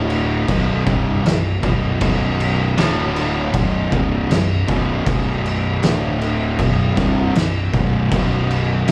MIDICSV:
0, 0, Header, 1, 4, 480
1, 0, Start_track
1, 0, Tempo, 763359
1, 1266, Time_signature, 4, 2, 24, 8
1, 5608, End_track
2, 0, Start_track
2, 0, Title_t, "Distorted electric guitar"
2, 0, Program_c, 0, 30
2, 0, Note_on_c, 0, 38, 85
2, 0, Note_on_c, 0, 45, 91
2, 0, Note_on_c, 0, 50, 104
2, 298, Note_off_c, 0, 38, 0
2, 300, Note_off_c, 0, 45, 0
2, 301, Note_off_c, 0, 50, 0
2, 303, Note_on_c, 0, 35, 88
2, 306, Note_on_c, 0, 42, 102
2, 309, Note_on_c, 0, 47, 102
2, 537, Note_off_c, 0, 35, 0
2, 539, Note_off_c, 0, 42, 0
2, 540, Note_off_c, 0, 47, 0
2, 541, Note_on_c, 0, 36, 92
2, 542, Note_on_c, 0, 43, 94
2, 542, Note_on_c, 0, 48, 96
2, 776, Note_off_c, 0, 36, 0
2, 777, Note_off_c, 0, 43, 0
2, 777, Note_off_c, 0, 48, 0
2, 781, Note_on_c, 0, 35, 69
2, 783, Note_on_c, 0, 42, 80
2, 976, Note_off_c, 0, 35, 0
2, 977, Note_off_c, 0, 42, 0
2, 1020, Note_on_c, 0, 35, 91
2, 1021, Note_on_c, 0, 42, 99
2, 1025, Note_on_c, 0, 47, 104
2, 1252, Note_off_c, 0, 35, 0
2, 1253, Note_off_c, 0, 42, 0
2, 1256, Note_off_c, 0, 47, 0
2, 1260, Note_on_c, 0, 35, 103
2, 1261, Note_on_c, 0, 42, 115
2, 1264, Note_on_c, 0, 47, 112
2, 1742, Note_off_c, 0, 35, 0
2, 1742, Note_on_c, 0, 38, 98
2, 1746, Note_off_c, 0, 42, 0
2, 1746, Note_on_c, 0, 45, 102
2, 1749, Note_off_c, 0, 47, 0
2, 1749, Note_on_c, 0, 50, 102
2, 2216, Note_off_c, 0, 38, 0
2, 2218, Note_on_c, 0, 35, 91
2, 2219, Note_off_c, 0, 45, 0
2, 2220, Note_off_c, 0, 50, 0
2, 2222, Note_on_c, 0, 42, 101
2, 2223, Note_on_c, 0, 47, 114
2, 2453, Note_off_c, 0, 35, 0
2, 2456, Note_on_c, 0, 36, 87
2, 2457, Note_off_c, 0, 42, 0
2, 2457, Note_off_c, 0, 47, 0
2, 2464, Note_on_c, 0, 43, 90
2, 2465, Note_on_c, 0, 48, 112
2, 2694, Note_off_c, 0, 36, 0
2, 2697, Note_off_c, 0, 43, 0
2, 2698, Note_off_c, 0, 48, 0
2, 2700, Note_on_c, 0, 35, 63
2, 2703, Note_on_c, 0, 42, 83
2, 2895, Note_off_c, 0, 35, 0
2, 2896, Note_off_c, 0, 42, 0
2, 2939, Note_on_c, 0, 35, 88
2, 2941, Note_on_c, 0, 47, 111
2, 2944, Note_on_c, 0, 42, 101
2, 3175, Note_off_c, 0, 35, 0
2, 3176, Note_off_c, 0, 47, 0
2, 3177, Note_off_c, 0, 42, 0
2, 3182, Note_on_c, 0, 35, 107
2, 3184, Note_on_c, 0, 42, 111
2, 3187, Note_on_c, 0, 47, 121
2, 3656, Note_off_c, 0, 35, 0
2, 3657, Note_off_c, 0, 42, 0
2, 3659, Note_off_c, 0, 47, 0
2, 3661, Note_on_c, 0, 45, 91
2, 3662, Note_on_c, 0, 38, 102
2, 3663, Note_on_c, 0, 50, 101
2, 4136, Note_off_c, 0, 38, 0
2, 4136, Note_off_c, 0, 45, 0
2, 4136, Note_off_c, 0, 50, 0
2, 4140, Note_on_c, 0, 35, 98
2, 4146, Note_on_c, 0, 42, 106
2, 4146, Note_on_c, 0, 47, 117
2, 4375, Note_off_c, 0, 35, 0
2, 4378, Note_off_c, 0, 42, 0
2, 4378, Note_off_c, 0, 47, 0
2, 4381, Note_on_c, 0, 36, 90
2, 4385, Note_on_c, 0, 43, 100
2, 4388, Note_on_c, 0, 48, 110
2, 4616, Note_off_c, 0, 36, 0
2, 4617, Note_off_c, 0, 43, 0
2, 4619, Note_off_c, 0, 48, 0
2, 4626, Note_on_c, 0, 35, 66
2, 4628, Note_on_c, 0, 42, 80
2, 4817, Note_off_c, 0, 35, 0
2, 4818, Note_off_c, 0, 42, 0
2, 4865, Note_on_c, 0, 35, 94
2, 4867, Note_on_c, 0, 42, 110
2, 4869, Note_on_c, 0, 47, 102
2, 5097, Note_off_c, 0, 35, 0
2, 5098, Note_off_c, 0, 42, 0
2, 5100, Note_off_c, 0, 47, 0
2, 5105, Note_on_c, 0, 35, 96
2, 5109, Note_on_c, 0, 47, 118
2, 5112, Note_on_c, 0, 42, 109
2, 5577, Note_off_c, 0, 35, 0
2, 5579, Note_off_c, 0, 47, 0
2, 5580, Note_off_c, 0, 42, 0
2, 5584, Note_on_c, 0, 38, 91
2, 5587, Note_on_c, 0, 45, 92
2, 5588, Note_on_c, 0, 50, 91
2, 5608, Note_off_c, 0, 38, 0
2, 5608, Note_off_c, 0, 45, 0
2, 5608, Note_off_c, 0, 50, 0
2, 5608, End_track
3, 0, Start_track
3, 0, Title_t, "Fingered electric bass"
3, 0, Program_c, 1, 33
3, 0, Note_on_c, 1, 26, 101
3, 280, Note_off_c, 1, 26, 0
3, 305, Note_on_c, 1, 23, 95
3, 529, Note_off_c, 1, 23, 0
3, 547, Note_on_c, 1, 24, 92
3, 770, Note_off_c, 1, 24, 0
3, 783, Note_on_c, 1, 23, 80
3, 1008, Note_off_c, 1, 23, 0
3, 1026, Note_on_c, 1, 23, 97
3, 1249, Note_off_c, 1, 23, 0
3, 1266, Note_on_c, 1, 23, 89
3, 1721, Note_off_c, 1, 23, 0
3, 1745, Note_on_c, 1, 26, 102
3, 2200, Note_off_c, 1, 26, 0
3, 2225, Note_on_c, 1, 23, 101
3, 2449, Note_off_c, 1, 23, 0
3, 2466, Note_on_c, 1, 24, 100
3, 2689, Note_off_c, 1, 24, 0
3, 2708, Note_on_c, 1, 23, 78
3, 2930, Note_off_c, 1, 23, 0
3, 2944, Note_on_c, 1, 23, 91
3, 3168, Note_off_c, 1, 23, 0
3, 3185, Note_on_c, 1, 23, 98
3, 3640, Note_off_c, 1, 23, 0
3, 3672, Note_on_c, 1, 26, 101
3, 4123, Note_off_c, 1, 26, 0
3, 4145, Note_on_c, 1, 23, 95
3, 4368, Note_off_c, 1, 23, 0
3, 4386, Note_on_c, 1, 24, 97
3, 4609, Note_off_c, 1, 24, 0
3, 4627, Note_on_c, 1, 23, 76
3, 4849, Note_off_c, 1, 23, 0
3, 4865, Note_on_c, 1, 23, 92
3, 5088, Note_off_c, 1, 23, 0
3, 5105, Note_on_c, 1, 23, 95
3, 5559, Note_off_c, 1, 23, 0
3, 5582, Note_on_c, 1, 26, 99
3, 5608, Note_off_c, 1, 26, 0
3, 5608, End_track
4, 0, Start_track
4, 0, Title_t, "Drums"
4, 62, Note_on_c, 9, 49, 63
4, 125, Note_off_c, 9, 49, 0
4, 305, Note_on_c, 9, 36, 105
4, 308, Note_on_c, 9, 49, 79
4, 368, Note_off_c, 9, 36, 0
4, 371, Note_off_c, 9, 49, 0
4, 545, Note_on_c, 9, 36, 102
4, 545, Note_on_c, 9, 49, 61
4, 608, Note_off_c, 9, 36, 0
4, 608, Note_off_c, 9, 49, 0
4, 791, Note_on_c, 9, 49, 86
4, 798, Note_on_c, 9, 38, 120
4, 853, Note_off_c, 9, 49, 0
4, 860, Note_off_c, 9, 38, 0
4, 1026, Note_on_c, 9, 36, 101
4, 1029, Note_on_c, 9, 49, 67
4, 1089, Note_off_c, 9, 36, 0
4, 1092, Note_off_c, 9, 49, 0
4, 1262, Note_on_c, 9, 49, 87
4, 1266, Note_on_c, 9, 36, 104
4, 1325, Note_off_c, 9, 49, 0
4, 1328, Note_off_c, 9, 36, 0
4, 1510, Note_on_c, 9, 49, 68
4, 1573, Note_off_c, 9, 49, 0
4, 1746, Note_on_c, 9, 49, 93
4, 1753, Note_on_c, 9, 38, 112
4, 1809, Note_off_c, 9, 49, 0
4, 1816, Note_off_c, 9, 38, 0
4, 1988, Note_on_c, 9, 49, 71
4, 2051, Note_off_c, 9, 49, 0
4, 2223, Note_on_c, 9, 49, 83
4, 2225, Note_on_c, 9, 36, 100
4, 2286, Note_off_c, 9, 49, 0
4, 2288, Note_off_c, 9, 36, 0
4, 2466, Note_on_c, 9, 36, 103
4, 2469, Note_on_c, 9, 49, 61
4, 2529, Note_off_c, 9, 36, 0
4, 2532, Note_off_c, 9, 49, 0
4, 2709, Note_on_c, 9, 49, 92
4, 2716, Note_on_c, 9, 38, 120
4, 2772, Note_off_c, 9, 49, 0
4, 2778, Note_off_c, 9, 38, 0
4, 2946, Note_on_c, 9, 36, 99
4, 2948, Note_on_c, 9, 49, 61
4, 3009, Note_off_c, 9, 36, 0
4, 3011, Note_off_c, 9, 49, 0
4, 3185, Note_on_c, 9, 36, 115
4, 3189, Note_on_c, 9, 49, 84
4, 3248, Note_off_c, 9, 36, 0
4, 3252, Note_off_c, 9, 49, 0
4, 3431, Note_on_c, 9, 49, 62
4, 3494, Note_off_c, 9, 49, 0
4, 3664, Note_on_c, 9, 49, 80
4, 3671, Note_on_c, 9, 38, 117
4, 3727, Note_off_c, 9, 49, 0
4, 3734, Note_off_c, 9, 38, 0
4, 3908, Note_on_c, 9, 49, 64
4, 3971, Note_off_c, 9, 49, 0
4, 4143, Note_on_c, 9, 36, 106
4, 4147, Note_on_c, 9, 49, 80
4, 4206, Note_off_c, 9, 36, 0
4, 4209, Note_off_c, 9, 49, 0
4, 4385, Note_on_c, 9, 36, 103
4, 4388, Note_on_c, 9, 49, 63
4, 4395, Note_on_c, 9, 38, 34
4, 4447, Note_off_c, 9, 36, 0
4, 4451, Note_off_c, 9, 49, 0
4, 4458, Note_off_c, 9, 38, 0
4, 4625, Note_on_c, 9, 49, 90
4, 4632, Note_on_c, 9, 38, 123
4, 4688, Note_off_c, 9, 49, 0
4, 4695, Note_off_c, 9, 38, 0
4, 4864, Note_on_c, 9, 36, 97
4, 4866, Note_on_c, 9, 49, 59
4, 4927, Note_off_c, 9, 36, 0
4, 4929, Note_off_c, 9, 49, 0
4, 5104, Note_on_c, 9, 36, 110
4, 5108, Note_on_c, 9, 49, 85
4, 5167, Note_off_c, 9, 36, 0
4, 5171, Note_off_c, 9, 49, 0
4, 5348, Note_on_c, 9, 49, 65
4, 5411, Note_off_c, 9, 49, 0
4, 5582, Note_on_c, 9, 49, 90
4, 5589, Note_on_c, 9, 38, 124
4, 5608, Note_off_c, 9, 38, 0
4, 5608, Note_off_c, 9, 49, 0
4, 5608, End_track
0, 0, End_of_file